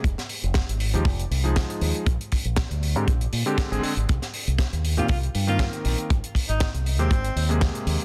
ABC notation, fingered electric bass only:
X:1
M:4/4
L:1/16
Q:"Swing 16ths" 1/4=119
K:Cm
V:1 name="Fingered electric bass" clef=bass
F,,, z2 F,,, z A,,,2 E,, F,,, z C,,2 z2 E,, z | B,,, z2 B,,, z D,,2 A,, B,,, z B,, z2 A,,, z A,,, | C,, z2 C,, z E,,2 B,, C,, z G,,2 z2 B,,, z | A,,, z2 A,,, z C,,2 E,, A,,, z E,,2 z2 E,, z |]